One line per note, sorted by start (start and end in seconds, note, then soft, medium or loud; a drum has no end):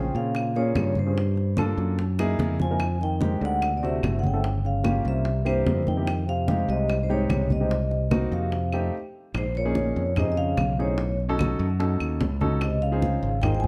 0.00 0.12 C#3 medium
0.00 0.37 C4 medium
0.00 0.37 C#4 medium
0.00 0.37 F4 medium
0.00 0.38 G#4 medium
0.00 0.16 G5 medium
0.14 0.72 A#2 medium
0.14 0.53 C#3 medium
0.14 0.58 F5 medium
0.14 high conga soft
0.34 high bongo medium
0.34 high conga soft
0.34 claves medium
0.54 0.94 A#2 medium
0.54 0.92 A#3 medium
0.54 0.92 C#4 medium
0.54 0.92 F4 medium
0.54 0.92 G#4 medium
0.54 0.94 C#5 medium
0.54 high bongo soft
0.54 high conga soft
0.75 1.72 G2 medium
0.75 high bongo medium
0.75 low bongo medium
0.75 high conga medium
0.75 claves medium
0.95 1.54 G2 medium
0.95 1.55 C5 medium
0.95 high bongo soft
0.95 high conga medium
1.06 1.17 C4 medium
1.06 1.17 C#4 medium
1.06 1.17 F4 medium
1.06 1.17 G#4 medium
1.15 high bongo medium
1.15 high conga soft
1.36 high bongo soft
1.36 high conga soft
1.57 1.99 A#3 medium
1.57 1.99 D4 medium
1.57 1.99 F4 medium
1.57 1.99 A4 medium
1.57 high bongo medium
1.57 high conga medium
1.57 claves medium
1.77 2.35 F#2 medium
1.77 high bongo soft
1.77 high conga soft
1.98 high bongo medium
1.98 high conga soft
2.19 2.55 A#3 medium
2.19 2.55 D#4 medium
2.19 2.55 E4 medium
2.19 2.55 G#4 loud
2.19 high bongo medium
2.19 high conga soft
2.19 claves medium
2.39 3.36 F2 medium
2.39 low bongo medium
2.39 high conga medium
2.59 2.99 F3 medium
2.59 2.99 G#5 loud
2.59 low bongo medium
2.59 high conga medium
2.71 2.81 A#3 medium
2.71 2.81 D#4 medium
2.71 2.81 E4 medium
2.71 2.81 A#4 medium
2.80 high bongo medium
2.80 claves medium
3.01 3.39 D#3 medium
3.01 3.44 G5 loud
3.01 high bongo soft
3.01 high conga soft
3.21 3.62 G#3 medium
3.21 3.62 C4 medium
3.21 3.62 D#4 medium
3.21 3.62 G4 medium
3.21 high bongo medium
3.21 high conga medium
3.41 3.99 D2 medium
3.41 3.73 D3 medium
3.41 high conga soft
3.45 3.78 F#5 medium
3.62 high bongo medium
3.62 high conga soft
3.62 claves medium
3.74 3.82 B2 medium
3.74 3.84 D5 medium
3.82 4.14 C3 medium
3.82 4.19 A3 medium
3.82 4.19 C4 medium
3.82 4.19 E4 medium
3.82 4.19 F#4 medium
3.82 4.19 E5 medium
3.82 high bongo soft
3.82 high conga soft
4.03 4.99 G1 medium
4.03 high bongo medium
4.03 low bongo medium
4.03 high conga medium
4.03 claves medium
4.16 4.22 D3 medium
4.16 4.25 F#5 medium
4.23 4.61 C#3 medium
4.23 4.63 G5 medium
4.23 high bongo soft
4.23 high conga medium
4.33 4.44 A3 medium
4.33 4.44 C4 medium
4.33 4.44 E4 medium
4.33 4.44 A4 medium
4.44 high bongo medium
4.44 high conga soft
4.63 5.02 C#3 medium
4.63 5.03 F5 medium
4.63 high bongo soft
4.63 high conga soft
4.84 5.25 A#3 medium
4.84 5.25 C#4 medium
4.84 5.25 F4 medium
4.84 5.25 G4 medium
4.84 high bongo medium
4.84 high conga medium
4.84 claves medium
5.05 5.63 C2 medium
5.05 5.43 C3 medium
5.05 5.45 E5 medium
5.05 high bongo soft
5.05 high conga soft
5.25 high bongo medium
5.25 high conga soft
5.45 5.84 G2 medium
5.45 5.82 A#3 medium
5.45 5.82 C4 medium
5.45 5.82 E4 medium
5.45 5.82 G4 medium
5.45 5.88 C5 medium
5.45 high bongo soft
5.45 high conga soft
5.45 claves medium
5.66 6.63 F2 medium
5.66 high bongo medium
5.66 low bongo medium
5.66 high conga medium
5.84 6.24 D#3 medium
5.84 6.26 G5 medium
5.84 high conga medium
5.97 6.08 A#3 medium
5.97 6.07 C4 medium
5.97 6.07 E4 medium
5.97 6.08 G4 medium
6.07 high bongo medium
6.07 claves medium
6.26 6.65 C3 medium
6.26 6.71 F5 medium
6.26 high bongo soft
6.26 high conga soft
6.48 6.91 G#3 medium
6.48 6.91 C4 medium
6.48 6.91 D#4 medium
6.48 6.91 G4 medium
6.48 high bongo medium
6.48 high conga medium
6.68 7.26 C2 medium
6.68 7.00 C3 medium
6.68 7.04 D#5 medium
6.68 high conga soft
6.88 high bongo medium
6.88 high conga soft
6.88 claves medium
7.02 7.08 G#2 medium
7.02 7.10 C5 medium
7.08 7.47 G#2 medium
7.08 7.46 C3 medium
7.08 7.46 G#3 medium
7.08 7.45 D#4 medium
7.08 7.46 G4 medium
7.08 7.49 C#5 medium
7.08 high bongo soft
7.08 high conga soft
7.29 8.26 C2 medium
7.29 high bongo medium
7.29 low bongo medium
7.29 high conga medium
7.29 claves medium
7.50 8.08 C3 medium
7.50 8.09 D#5 medium
7.50 high bongo soft
7.50 high conga medium
7.60 7.71 G#3 medium
7.60 7.71 C4 medium
7.60 7.71 D#4 medium
7.60 7.71 G4 medium
7.70 high bongo medium
7.70 high conga soft
7.91 high bongo soft
7.91 high conga soft
8.11 8.52 A#3 medium
8.11 8.52 C4 medium
8.11 8.53 D#4 medium
8.11 8.53 F#4 loud
8.11 high bongo medium
8.11 high conga medium
8.11 claves medium
8.32 8.89 F2 medium
8.32 8.90 C3 medium
8.32 8.90 F5 medium
8.32 high bongo soft
8.32 high conga soft
8.52 high bongo medium
8.52 high conga soft
8.72 8.94 A3 medium
8.72 8.94 C4 medium
8.72 8.94 D#4 medium
8.72 8.94 G4 medium
8.72 high bongo soft
8.72 high conga soft
8.72 claves medium
9.34 9.92 A#1 loud
9.34 9.46 G#2 medium
9.34 9.46 C5 medium
9.34 high bongo medium
9.34 high conga soft
9.34 claves medium
9.55 10.13 A#2 medium
9.55 10.13 C#5 medium
9.55 high bongo soft
9.55 high conga soft
9.65 10.01 A#3 medium
9.65 10.01 C#4 medium
9.65 10.01 D#4 medium
9.65 10.01 G#4 medium
9.75 high bongo medium
9.75 high conga medium
9.96 10.53 F2 loud
9.96 high bongo soft
9.96 high conga soft
10.16 10.29 C3 medium
10.16 10.59 C4 medium
10.16 10.59 C#4 medium
10.16 10.60 D#4 medium
10.16 10.60 G#4 medium
10.16 10.31 D#5 medium
10.16 high bongo medium
10.16 high conga soft
10.16 low conga medium
10.16 claves medium
10.29 10.36 C3 medium
10.29 10.38 D#5 medium
10.37 10.75 C#3 medium
10.37 10.75 F5 loud
10.37 high bongo soft
10.37 high conga soft
10.57 11.53 B1 medium
10.57 high bongo medium
10.57 low bongo medium
10.57 high conga medium
10.57 claves medium
10.77 11.16 A2 medium
10.77 10.99 C4 medium
10.77 10.99 C#4 medium
10.77 10.99 D#4 medium
10.77 10.99 G#4 medium
10.77 11.17 C#5 medium
10.98 high bongo medium
10.98 high conga soft
11.20 high conga soft
11.29 11.64 C#4 medium
11.29 11.65 D#4 medium
11.29 11.65 F#4 medium
11.29 11.65 A4 loud
11.39 high bongo medium
11.39 high conga medium
11.39 claves medium
11.59 11.97 F#2 loud
11.59 high bongo soft
11.59 high conga soft
11.79 12.22 C#4 medium
11.79 12.23 D#4 medium
11.79 12.23 F#4 medium
11.79 12.23 A4 medium
11.79 high bongo medium
11.79 high conga soft
12.00 12.19 D#2 medium
12.00 high bongo soft
12.00 high conga soft
12.00 claves medium
12.21 13.17 C#2 medium
12.21 high bongo medium
12.21 low bongo medium
12.21 high conga medium
12.41 12.61 C#4 medium
12.41 12.61 D#4 medium
12.41 12.61 F#4 medium
12.41 12.61 A4 loud
12.41 high bongo soft
12.41 high conga medium
12.61 12.81 C3 medium
12.61 12.83 D#5 medium
12.61 high bongo medium
12.61 high conga soft
12.61 claves medium
12.82 13.39 C#3 medium
12.82 13.39 F5 medium
12.82 high bongo soft
12.82 high conga soft
12.92 13.28 C4 medium
12.92 13.28 D#4 medium
12.92 13.28 F4 medium
12.92 13.28 G#4 medium
13.02 high bongo medium
13.02 high conga medium
13.23 13.67 G#1 loud
13.23 high bongo soft
13.23 high conga soft
13.42 13.55 D#3 medium
13.42 13.67 C4 medium
13.42 13.67 D#4 medium
13.42 13.67 F4 medium
13.42 13.67 G#4 medium
13.42 13.53 G5 loud
13.42 high bongo medium
13.42 high conga soft
13.42 low conga medium
13.42 claves medium
13.55 13.61 D#3 medium
13.55 13.63 G5 medium
13.60 13.67 F3 medium
13.60 13.67 G#5 loud
13.60 high conga soft
13.60 low conga medium